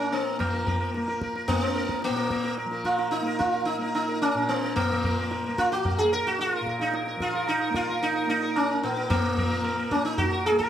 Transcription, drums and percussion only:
0.12 tabla na
0.40 tabla na, tabla ge
0.67 tabla ge
0.94 tabla te
1.08 tabla te
1.22 tabla ke
1.36 tabla te
1.48 tabla tin, tabla ge
1.76 tabla na
1.89 tabla ke
2.02 tabla te
2.16 tabla te
2.31 tabla ke
2.44 tabla te
2.58 tabla te
2.71 tabla te
2.84 tabla ke
2.99 tabla te
3.13 tabla te
3.27 tabla te
3.41 tabla ke
3.55 tabla te
3.68 tabla tin
3.95 tabla na
4.23 tabla na
4.50 tabla na
4.77 tabla na, tabla ge
5.04 tabla ge
5.31 tabla te
5.44 tabla te
5.58 tabla ke
5.72 tabla te
5.85 tabla tin, tabla ge
6.12 tabla na
6.39 tabla te
6.53 tabla te
6.67 tabla ke
6.80 tabla te
6.94 tabla te
7.07 tabla te
7.20 tabla ke
7.34 tabla te
7.48 tabla na
7.74 tabla ke
8.02 tabla tin
8.29 tabla na
8.56 tabla na
8.84 tabla na
9.10 tabla na, tabla ge
9.38 tabla ge
9.65 tabla na
9.91 tabla ke
10.18 tabla tin, tabla ge
10.46 tabla na
10.60 tabla ke

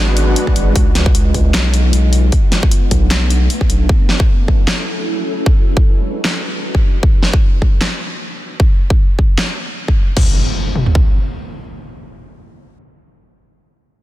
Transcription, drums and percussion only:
0.17 closed hi-hat
0.36 closed hi-hat
0.47 kick
0.56 closed hi-hat
0.76 kick, closed hi-hat
0.95 snare, closed hi-hat
1.06 kick
1.15 closed hi-hat
1.34 kick, closed hi-hat
1.54 snare, clap, closed hi-hat
1.74 closed hi-hat
1.93 closed hi-hat
2.13 closed hi-hat
2.32 kick, closed hi-hat
2.52 snare, closed hi-hat
2.63 kick
2.71 closed hi-hat
2.91 kick, closed hi-hat
3.11 snare, clap, closed hi-hat
3.30 closed hi-hat
3.50 closed hi-hat
3.61 kick
3.70 closed hi-hat
3.89 kick
4.09 snare
4.20 kick
4.48 kick
4.68 snare, clap
5.46 kick
5.77 kick
6.25 snare, clap
6.75 kick
7.03 kick
7.23 snare
7.33 kick
7.62 kick
7.81 snare, clap
8.60 kick
8.90 kick
9.19 kick
9.38 snare, clap
9.88 kick
10.17 kick, crash
10.76 mid tom
10.86 floor tom
10.95 kick

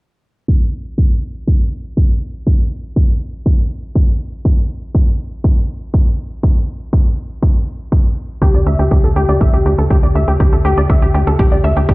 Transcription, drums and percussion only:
0.48 kick
0.98 kick
1.48 kick
1.97 kick
2.47 kick
2.96 kick
3.46 kick
3.95 kick
4.45 kick
4.95 kick
5.44 kick
5.94 kick
6.43 kick
6.93 kick
7.43 kick
7.92 kick
8.42 kick
8.91 kick
9.41 kick
9.90 kick
10.40 kick
10.90 kick
11.39 kick
11.89 kick

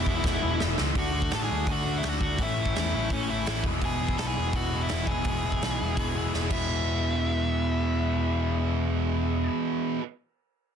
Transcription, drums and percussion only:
0.06 kick
0.24 kick, snare
0.60 snare
0.78 snare
0.95 kick, open hi-hat
1.22 kick
1.31 snare, open hi-hat
1.67 kick, open hi-hat
2.03 snare, open hi-hat
2.21 kick
2.38 kick, open hi-hat
2.66 kick
2.75 snare, open hi-hat
3.10 kick, open hi-hat
3.46 snare, open hi-hat
3.64 kick
3.82 kick, open hi-hat
4.09 kick
4.18 snare, open hi-hat
4.53 kick, open hi-hat
4.88 snare, open hi-hat
5.07 kick
5.24 kick, open hi-hat
5.52 kick
5.62 snare, open hi-hat
5.97 kick, open hi-hat
6.34 snare
6.50 kick, crash

